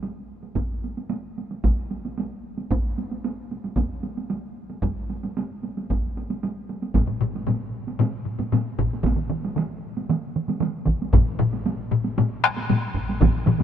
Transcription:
0.03 taiko high soft
0.43 taiko high soft
0.56 taiko medium
0.56 taiko high soft
0.84 taiko high soft
0.97 taiko high soft
1.10 taiko high medium
1.38 taiko high soft
1.51 taiko high soft
1.64 taiko medium
1.64 taiko high medium
1.91 taiko high soft
2.05 taiko high soft
2.18 taiko high soft
2.58 taiko high soft
2.71 taiko medium
2.71 taiko high medium
2.98 taiko high soft
3.11 taiko high soft
3.24 taiko high medium
3.51 taiko high soft
3.64 taiko high soft
3.76 taiko medium
3.76 taiko high soft
4.03 taiko high soft
4.17 taiko high soft
4.30 taiko high medium
4.70 taiko high soft
4.83 taiko medium
4.83 taiko high soft
5.10 taiko high soft
5.23 taiko high soft
5.37 taiko high medium
5.63 taiko high soft
5.77 taiko high soft
5.90 taiko medium
5.90 taiko high medium
6.17 taiko high soft
6.30 taiko high soft
6.43 taiko high medium
6.69 taiko high soft
6.83 taiko high soft
6.94 taiko medium
6.94 taiko low-mid medium
6.94 taiko high medium
7.07 taiko low-mid medium
7.21 taiko low-mid medium
7.36 taiko high soft
7.47 taiko low-mid medium
7.47 taiko high medium
7.88 taiko high soft
7.99 taiko low-mid loud
7.99 taiko high medium
8.25 taiko low-mid medium
8.39 taiko low-mid medium
8.39 taiko high medium
8.53 taiko low-mid medium
8.53 taiko high medium
8.78 taiko medium
8.78 taiko low-mid medium
8.93 taiko high soft
9.03 taiko medium
9.03 taiko mid medium
9.03 taiko high medium
9.16 taiko mid medium
9.30 taiko mid medium
9.45 taiko high medium
9.56 taiko mid medium
9.56 taiko high medium
9.97 taiko high medium
10.09 taiko mid medium
10.09 taiko high medium
10.36 taiko mid medium
10.48 taiko mid medium
10.48 taiko high medium
10.61 taiko mid medium
10.61 taiko high medium
10.86 taiko medium
10.86 taiko mid loud
11.02 taiko high soft
11.13 taiko medium
11.13 taiko low-mid medium
11.13 taiko high medium
11.39 taiko low-mid loud
11.53 taiko high soft
11.66 taiko high medium
11.92 taiko low-mid medium
12.04 taiko high medium
12.18 taiko low-mid loud
12.18 taiko high medium
12.44 taiko rim medium
12.57 taiko high medium
12.69 taiko low-mid medium
12.69 taiko high medium
12.94 taiko medium
13.09 taiko high soft
13.20 taiko loud
13.20 taiko low-mid loud
13.20 taiko mid loud
13.20 taiko high medium
13.46 taiko low-mid medium
13.46 taiko mid loud
13.59 taiko low-mid medium
13.59 taiko mid medium
13.59 taiko high medium

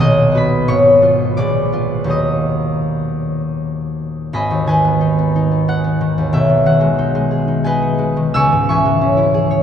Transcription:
0.00 0.70 B1 medium
0.00 0.33 F#4 medium
0.00 0.71 D#5 medium
0.00 0.72 F#5 medium
0.00 0.70 D#6 medium
0.00 0.71 F#6 loud
0.32 1.01 B3 soft
0.32 0.71 F#4 medium
0.32 2.14 B4 medium
0.37 2.14 B5 medium
0.68 1.40 G#1 medium
0.68 1.41 C#5 medium
0.68 1.88 C#6 medium
1.02 1.71 B3 soft
1.02 1.72 F4 soft
1.37 2.13 A#1 medium
1.37 2.14 D5 medium
1.37 2.13 D6 medium
1.72 2.13 B3 soft
1.72 2.13 F4 soft
2.04 4.34 D#2 medium
2.04 4.35 F#3 soft
2.04 4.35 A#3 soft
2.08 5.00 D#4 soft
2.08 4.34 D#5 medium
2.08 6.00 D#6 medium
4.33 6.36 G#1 medium
4.33 4.67 D#5 medium
4.33 4.66 G#5 medium
4.33 8.24 B5 medium
4.51 6.17 D#2 soft
4.67 5.99 D#3 soft
4.67 7.65 B4 medium
4.67 7.65 D#5 medium
4.67 7.63 G#5 medium
4.85 5.17 B3 medium
5.01 5.34 D#4 medium
5.18 5.50 B3 soft
5.36 5.67 D#4 soft
5.51 5.83 B3 soft
5.68 6.97 D#4 soft
5.68 6.65 F#5 medium
5.84 8.37 B3 soft
6.01 6.36 D#3 soft
6.18 6.37 D#2 soft
6.33 8.37 B1 medium
6.33 6.89 E5 medium
6.49 8.37 B2 soft
6.66 8.15 D#3 soft
6.66 8.38 F#5 medium
6.81 7.14 G#3 medium
6.98 7.46 D#4 medium
7.15 7.97 G#3 medium
7.31 7.64 G#4 soft
7.48 7.81 D#4 soft
7.64 9.33 G#4 medium
7.64 8.38 B4 medium
7.64 8.38 D#5 medium
7.64 8.35 G#5 medium
7.82 8.38 D#4 soft
7.98 8.84 G#3 soft
8.17 8.37 D#3 soft
8.34 9.63 C#2 medium
8.34 8.69 G#5 medium
8.34 8.68 C#6 medium
8.34 9.63 E6 loud
8.52 9.63 G#2 soft
8.69 9.63 E3 soft
8.69 9.63 E5 medium
8.69 9.63 G#5 medium
8.69 9.63 C#6 medium
8.85 9.63 G#3 medium
9.01 9.63 C#4 medium
9.17 9.63 E4 medium
9.34 9.63 G#4 medium
9.51 9.63 C#5 medium

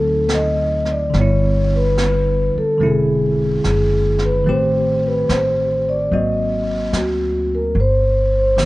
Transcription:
0.00 1.10 D2 medium
0.00 1.08 D3 soft
0.00 1.14 F#3 soft
0.00 1.14 C4 soft
0.00 1.15 D#4 soft
0.00 0.34 A4 medium
0.29 snare soft
0.29 hi-hat pedal soft
0.34 0.91 D#5 medium
0.85 snare soft
0.91 1.14 D5 medium
1.10 2.77 D3 soft
1.10 brush sweep soft
1.10 snare soft
1.14 2.51 G1 medium
1.14 2.81 G3 soft
1.14 2.83 B3 soft
1.18 2.82 E4 soft
1.18 1.76 C#5 medium
1.76 2.51 B4 medium
1.97 snare soft
1.97 hi-hat pedal soft
2.56 2.84 A4 medium
2.56 muted upright bass stroke soft
2.78 3.60 E1 medium
2.78 4.45 D3 soft
2.78 4.46 G#3 soft
2.78 4.46 C4 soft
2.78 brush sweep soft
2.83 4.47 E4 medium
2.83 3.62 G#4 medium
3.64 4.43 F#1 medium
3.64 4.24 G#4 medium
3.64 snare soft
3.64 hi-hat pedal soft
4.18 snare soft
4.25 4.47 B4 medium
4.44 5.25 A1 medium
4.44 6.11 D#3 soft
4.44 6.12 A3 soft
4.44 6.12 C4 soft
4.44 brush sweep soft
4.49 6.13 G4 medium
4.49 5.01 C5 medium
5.07 5.32 B4 medium
5.29 6.08 A1 medium
5.29 5.89 C5 medium
5.29 snare soft
5.29 hi-hat pedal soft
5.89 6.14 D5 medium
6.11 6.90 G#1 medium
6.11 7.75 F#3 soft
6.11 7.76 A#3 soft
6.11 7.76 C4 soft
6.11 7.76 F#4 soft
6.11 6.97 D#5 medium
6.11 brush sweep soft
6.93 7.71 D2 medium
6.93 7.53 F#4 medium
6.93 snare soft
6.93 hi-hat pedal soft
7.55 7.76 A#4 medium
7.75 8.65 G1 medium
7.75 brush sweep soft
7.80 8.35 C5 medium
8.39 8.59 C5 medium
8.57 8.65 D3 soft
8.57 8.65 F3 soft
8.57 8.65 A#3 soft
8.57 8.65 G4 soft
8.57 snare soft
8.57 hi-hat pedal medium

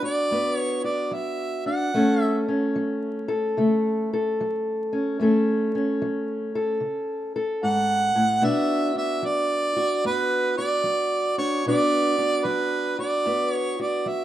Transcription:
0.00 0.24 F#3 medium
0.00 0.30 B3 medium
0.00 1.65 D4 medium
0.00 0.84 F#4 medium
0.04 0.56 D5 medium
0.31 1.06 F#2 medium
0.31 1.90 B3 medium
0.56 0.80 C#5 medium
0.84 1.95 F#4 medium
0.84 1.15 D5 medium
1.11 1.87 F#3 medium
1.11 1.66 E5 medium
1.66 1.90 D4 medium
1.66 2.22 F#5 medium
1.94 2.69 F#2 medium
1.94 3.57 A3 medium
1.94 2.48 C#4 medium
1.94 3.28 A4 medium
2.22 2.43 E5 medium
2.48 4.91 C#4 medium
2.75 3.51 F#3 medium
3.28 4.09 A4 medium
3.57 4.32 C#3 medium
3.57 5.19 A3 medium
4.13 5.17 A4 medium
4.40 5.14 F#3 medium
4.93 5.19 C#4 medium
5.20 5.95 F#2 medium
5.20 6.82 A3 medium
5.20 5.73 C#4 medium
5.20 6.54 A4 medium
5.75 8.42 C#4 medium
6.02 6.76 F#3 medium
6.55 7.35 A4 medium
6.80 7.56 C#3 medium
7.36 8.40 A4 medium
7.63 8.15 G#2 medium
7.63 8.46 F#5 medium
8.15 8.43 A2 medium
8.41 9.17 B2 medium
8.41 10.05 B3 medium
8.41 8.95 D4 medium
8.41 9.76 F#4 medium
8.41 8.97 E5 medium
8.95 11.37 D4 medium
8.95 9.27 E5 medium
9.22 9.98 F#3 medium
9.22 10.05 D5 loud
9.76 10.58 F#4 medium
10.04 10.80 F#2 medium
10.04 11.63 B3 medium
10.04 10.55 B4 medium
10.58 11.68 F#4 medium
10.58 11.34 D5 medium
10.84 11.60 F#3 medium
11.38 11.62 D4 medium
11.38 11.64 C#5 medium
11.66 12.41 B2 medium
11.66 13.25 B3 medium
11.66 12.17 D4 medium
11.66 12.98 F#4 medium
11.66 12.47 D5 loud
12.18 14.24 D4 medium
12.45 13.21 F#3 medium
12.45 12.99 B4 medium
12.99 13.79 F#4 medium
12.99 13.52 D5 medium
13.26 14.02 F#2 medium
13.26 14.24 B3 medium
13.52 13.76 C#5 medium
13.79 14.24 F#4 medium
13.79 14.10 D5 medium
14.06 14.24 F#3 medium
14.06 14.24 E5 medium

